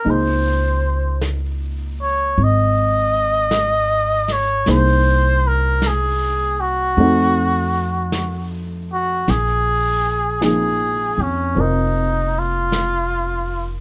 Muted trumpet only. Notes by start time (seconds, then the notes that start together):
Already playing: A#4
0.10 C5
2.02 C#5
2.43 D#5
4.32 C#5
4.71 C5
5.47 A#4
5.87 G#4
6.60 F#4
8.93 F#4
9.30 G#4
10.45 G#4
11.22 C#4
11.60 D#4
12.39 F4